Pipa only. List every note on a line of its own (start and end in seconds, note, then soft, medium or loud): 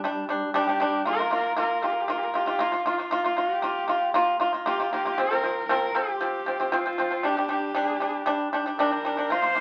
0.04 0.24 G3 medium
0.04 0.24 D4 medium
0.29 0.49 G3 medium
0.29 0.50 D4 medium
0.54 0.64 G3 loud
0.54 0.65 D4 loud
0.67 0.77 G3 medium
0.67 0.78 D4 medium
0.80 1.00 G3 medium
0.80 1.01 D4 medium
1.05 1.16 A#3 medium
1.05 1.16 F4 medium
1.19 1.29 A#3 medium
1.19 1.29 F4 medium
1.31 1.51 A#3 medium
1.31 1.52 F4 medium
1.57 1.77 A#3 medium
1.57 1.78 F4 loud
1.82 2.03 A#3 medium
1.82 2.04 F4 medium
2.08 2.29 A#3 medium
2.08 2.29 F4 medium
2.34 2.44 A#3 medium
2.34 2.45 F4 medium
2.46 2.57 A#3 medium
2.46 2.57 F4 medium
2.59 2.70 A#3 medium
2.59 2.70 F4 loud
2.72 2.83 A#3 medium
2.72 2.83 F4 medium
2.86 2.96 A#3 medium
2.86 2.96 F4 medium
2.98 3.09 A#3 medium
2.98 3.09 F4 medium
3.11 3.21 A#3 medium
3.11 3.22 F4 medium
3.24 3.35 A#3 medium
3.24 3.35 F4 medium
3.37 3.57 A#3 medium
3.37 3.58 F4 medium
3.62 3.83 A#3 medium
3.62 3.84 F4 medium
3.88 4.09 A#3 medium
3.88 4.09 F4 medium
4.14 4.35 A#3 loud
4.14 4.35 F4 loud
4.40 4.50 A#3 medium
4.40 4.51 F4 medium
4.53 4.63 A#3 medium
4.53 4.64 F4 medium
4.66 4.76 A#3 loud
4.66 4.77 F4 loud
4.80 4.89 A#3 medium
4.80 4.90 F4 medium
4.93 5.02 A#3 medium
4.93 5.03 F4 medium
5.05 5.15 A#3 medium
5.05 5.16 F4 medium
5.18 5.28 F3 medium
5.18 5.29 C4 medium
5.31 5.41 F3 medium
5.31 5.42 C4 medium
5.43 5.64 F3 medium
5.43 5.64 C4 medium
5.69 5.90 F3 medium
5.69 5.90 C4 loud
5.95 6.15 F3 medium
5.95 6.16 C4 medium
6.21 6.41 F3 medium
6.21 6.42 C4 medium
6.46 6.57 F3 medium
6.46 6.57 C4 medium
6.60 6.70 F3 medium
6.60 6.70 C4 medium
6.72 6.82 F3 loud
6.72 6.83 C4 loud
6.86 6.96 F3 medium
6.86 6.96 C4 medium
6.98 7.08 F3 medium
6.98 7.09 C4 medium
7.11 7.21 F3 medium
7.11 7.21 C4 medium
7.23 7.34 G3 medium
7.23 7.34 D4 medium
7.37 7.47 G3 medium
7.37 7.48 D4 medium
7.49 7.70 G3 medium
7.49 7.70 D4 medium
7.75 7.95 G3 medium
7.75 7.96 D4 loud
8.00 8.21 G3 medium
8.00 8.22 D4 medium
8.26 8.47 G3 loud
8.26 8.47 D4 loud
8.53 8.63 G3 medium
8.53 8.64 D4 medium
8.66 8.76 G3 medium
8.66 8.77 D4 medium
8.79 8.89 G3 loud
8.79 8.89 D4 loud
8.91 9.01 G3 medium
8.91 9.02 D4 medium
9.05 9.15 G3 medium
9.05 9.15 D4 medium
9.17 9.27 G3 medium
9.17 9.28 D4 medium
9.30 9.40 A#3 medium
9.30 9.41 F4 medium
9.42 9.53 A#3 medium
9.42 9.53 F4 medium
9.55 9.60 A#3 medium
9.55 9.60 F4 medium